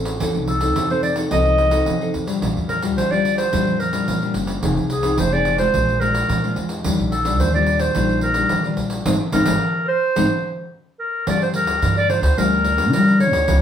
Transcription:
Already playing: upright bass A1, nylon-string guitar A2 C4 F4 A4
0.05 pandeiro
0.20 upright bass F2, nylon-string guitar F3 C4 D#4 A4, pandeiro
0.35 upright bass C2, pandeiro
0.48 clarinet A4, pandeiro
0.61 nylon-string guitar C4 D#4 A4, pandeiro
0.76 upright bass F2, nylon-string guitar C3, pandeiro
0.90 nylon-string guitar C4 D#4 A4, clarinet C5, pandeiro
1.03 clarinet D5, pandeiro
1.16 nylon-string guitar C4 D#4 A4, pandeiro
1.31 upright bass C2, nylon-string guitar F3 C4 D#4 A4, clarinet D#5, pandeiro
1.46 pandeiro
1.58 pandeiro
1.71 nylon-string guitar C4 D#4 A4, pandeiro
1.86 nylon-string guitar C3, upright bass F3, pandeiro
2.01 nylon-string guitar C4 D#4 A4, pandeiro
2.14 upright bass F2, pandeiro
2.26 nylon-string guitar G3 D4 F4, pandeiro
2.42 upright bass A#1, nylon-string guitar A#2, pandeiro
2.57 upright bass F2, pandeiro
2.69 clarinet A#4, pandeiro
2.82 nylon-string guitar G3 D4 F4, pandeiro
2.97 upright bass A#1, nylon-string guitar F3, clarinet C5, pandeiro
3.11 nylon-string guitar G3 D4 F4, clarinet D5, pandeiro
3.25 pandeiro
3.37 clarinet C5, pandeiro
3.52 upright bass F2, nylon-string guitar A#2 G3 D4 F4, pandeiro
3.67 pandeiro
3.80 clarinet A#4, pandeiro
3.93 nylon-string guitar G3 D4 F4, pandeiro
4.08 upright bass A#2, nylon-string guitar F3, pandeiro
4.22 nylon-string guitar G3 D4 F4, pandeiro
4.34 upright bass F#1, pandeiro
4.47 pandeiro
4.63 upright bass F1, nylon-string guitar F3 C4 D#4 G#4, pandeiro
4.77 upright bass C2, pandeiro
4.90 clarinet G#4, pandeiro
5.03 nylon-string guitar C4 D#4 G#4, pandeiro
5.18 upright bass F1, nylon-string guitar C3, clarinet C5, pandeiro
5.32 nylon-string guitar C4 D#4 G#4, clarinet D5, pandeiro
5.45 pandeiro
5.58 nylon-string guitar G#3 D4 F4, clarinet C5, pandeiro
5.74 upright bass A#1, nylon-string guitar A#2, pandeiro
5.88 pandeiro
6.00 nylon-string guitar G#3 D4 F4, clarinet A#4, pandeiro
6.14 pandeiro
6.29 upright bass A#2, nylon-string guitar F3, pandeiro
6.44 nylon-string guitar G#3 D4 F4, pandeiro
6.56 upright bass F2, pandeiro
6.69 pandeiro
6.84 upright bass D#2, nylon-string guitar D#3 G3 D4 F4, pandeiro
6.99 upright bass A#1, pandeiro
7.11 clarinet A4, pandeiro
7.24 nylon-string guitar G3 D4 F4, pandeiro
7.39 upright bass D#2, nylon-string guitar A#2, clarinet C5, pandeiro
7.54 nylon-string guitar G3 D4 F4, clarinet D5, pandeiro
7.66 pandeiro
7.79 clarinet C5, pandeiro
7.95 upright bass A#1, nylon-string guitar D#3 G3 D4 F4, pandeiro
8.09 pandeiro
8.21 clarinet A#4, pandeiro
8.34 nylon-string guitar G3 D4 F4, pandeiro
8.49 nylon-string guitar A#2, upright bass D#3, pandeiro
8.64 nylon-string guitar G3 D4 F4, pandeiro
8.77 upright bass A#1, pandeiro
8.90 pandeiro
9.06 upright bass G#1, nylon-string guitar G#3 C4 D#4, pandeiro
9.32 upright bass G#1, nylon-string guitar G#3 C4 D#4, clarinet A#4, pandeiro
9.45 upright bass G#1, nylon-string guitar G#3 C4 D#4, pandeiro
9.88 clarinet C5
10.16 upright bass G#1, nylon-string guitar G#3 C4 D#4, pandeiro
11.00 clarinet A#4
11.27 upright bass G2, nylon-string guitar G3, clarinet D5, pandeiro
11.42 clarinet C5, pandeiro
11.54 clarinet A#4, pandeiro
11.67 upright bass D2, pandeiro
11.82 upright bass G2, nylon-string guitar D3 D4 F4 A#4, pandeiro
11.97 clarinet D5, pandeiro
12.09 nylon-string guitar D4 F4 A#4, clarinet C5, pandeiro
12.22 upright bass D2, clarinet C5, pandeiro
12.37 upright bass D2, nylon-string guitar G3 D4 F4 A#4, clarinet A#4, pandeiro
12.53 pandeiro
12.64 nylon-string guitar D4 F4 A#4, pandeiro
12.77 nylon-string guitar D4 F4 A#4, pandeiro
12.92 nylon-string guitar D3, upright bass G3, clarinet A#4, pandeiro
13.08 pandeiro
13.19 nylon-string guitar D4 F4 A#4, clarinet C#5, pandeiro
13.33 upright bass D2, pandeiro
13.47 upright bass C#2, nylon-string guitar C#3 B3 F4 A#4, pandeiro

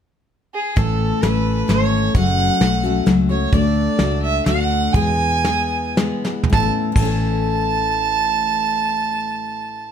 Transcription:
0.54 fiddle G#4
0.76 fingered electric bass A1, steel-string acoustic guitar A2 E3 A3 C#4 A4, fiddle A4, kick, closed hi-hat
1.22 fingered electric bass A1, steel-string acoustic guitar E3 A3 C#4 A4, fiddle B4, snare, closed hi-hat
1.68 fingered electric bass G#1, steel-string acoustic guitar E3 A3 C#4 A4, fiddle C#5, snare, closed hi-hat
2.15 fingered electric bass F#1, steel-string acoustic guitar F#2 C#3 F#3 A3 C#4 F#4, fiddle F#5, kick, closed hi-hat
2.60 fingered electric bass B1, steel-string acoustic guitar F#3 A3 C#4 F#4, snare, closed hi-hat
2.83 steel-string acoustic guitar F#3 A3 C#4 F#4
3.06 fingered electric bass C#2, steel-string acoustic guitar F#3 A3 C#4 F#4, snare, closed hi-hat
3.29 steel-string acoustic guitar F#3 A3 C#4 F#4, fiddle C#5
3.53 fingered electric bass D2, steel-string acoustic guitar D3 A3 D4 F#4, fiddle D5, kick, closed hi-hat
3.99 fingered electric bass C#2, steel-string acoustic guitar A3 D4 F#4, snare, closed hi-hat
4.22 fiddle E5
4.45 fingered electric bass D2, steel-string acoustic guitar D3 A3 D4 F#4, fiddle F#5, snare, closed hi-hat
4.94 steel-string acoustic guitar E2 B2 E3 G#3 B3 G#4, fingered electric bass E2, fiddle G#5, kick, closed hi-hat
5.44 steel-string acoustic guitar E3 G#3 B3 G#4, snare, closed hi-hat
5.97 steel-string acoustic guitar E3 G#3 B3 G#4, snare, closed hi-hat
6.24 steel-string acoustic guitar E3 G#3 B3 G#4, snare
6.43 floor tom
6.50 fingered electric bass A1, steel-string acoustic guitar A2, fiddle A5, kick, snare
6.54 steel-string acoustic guitar E3 A3
6.60 steel-string acoustic guitar C#4 A4
6.92 fingered electric bass A1, steel-string acoustic guitar A2 E3, fiddle A5, kick, crash
6.99 steel-string acoustic guitar A3 C#4
7.05 steel-string acoustic guitar A4

